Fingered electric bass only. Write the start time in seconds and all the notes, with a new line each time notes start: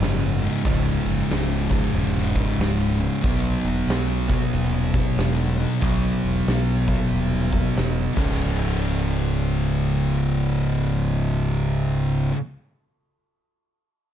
0.00 F#1
0.66 C#1
1.05 F#1
1.30 C#1
1.94 E1
2.59 C#1
3.24 B1
3.64 E1
3.87 B1
4.53 D#1
5.17 E1
5.83 B1
6.24 E1
6.48 B1
7.12 D#1
7.78 E1
8.17 C#1